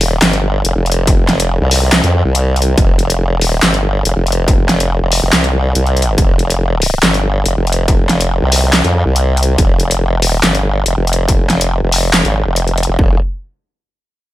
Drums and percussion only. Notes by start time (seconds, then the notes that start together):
0.01 open hi-hat
0.22 snare, clap, closed hi-hat
0.33 closed hi-hat
0.65 closed hi-hat
0.86 closed hi-hat
0.92 closed hi-hat
1.07 kick, closed hi-hat
1.29 snare, closed hi-hat
1.40 closed hi-hat
1.71 open hi-hat
1.93 snare, clap, closed hi-hat
2.04 closed hi-hat
2.35 closed hi-hat
2.56 closed hi-hat
2.62 closed hi-hat
2.78 kick, closed hi-hat
2.99 closed hi-hat
3.10 closed hi-hat
3.41 open hi-hat
3.63 snare, clap, closed hi-hat
3.74 closed hi-hat
4.05 closed hi-hat
4.27 closed hi-hat
4.32 closed hi-hat
4.48 kick, closed hi-hat
4.69 snare, closed hi-hat
4.80 closed hi-hat
5.12 open hi-hat
5.33 snare, clap, closed hi-hat
5.44 closed hi-hat
5.75 closed hi-hat
5.87 closed hi-hat
5.97 closed hi-hat
6.02 closed hi-hat
6.18 kick, closed hi-hat
6.39 closed hi-hat
6.50 closed hi-hat
6.82 open hi-hat
7.03 snare, clap, closed hi-hat
7.14 closed hi-hat
7.46 closed hi-hat
7.67 closed hi-hat
7.72 closed hi-hat
7.88 kick, closed hi-hat
8.09 snare, closed hi-hat
8.21 closed hi-hat
8.52 open hi-hat
8.73 snare, clap, closed hi-hat
8.84 closed hi-hat
9.16 closed hi-hat
9.37 closed hi-hat
9.43 closed hi-hat
9.58 kick, closed hi-hat
9.80 closed hi-hat
9.91 closed hi-hat
10.22 open hi-hat
10.43 snare, clap, closed hi-hat
10.55 closed hi-hat
10.86 closed hi-hat
11.07 closed hi-hat
11.13 closed hi-hat
11.28 kick, closed hi-hat
11.50 snare, closed hi-hat
11.61 closed hi-hat
11.92 open hi-hat
12.14 snare, clap, closed hi-hat
12.25 closed hi-hat
12.56 closed hi-hat
12.67 closed hi-hat
12.78 closed hi-hat
12.83 closed hi-hat
12.99 kick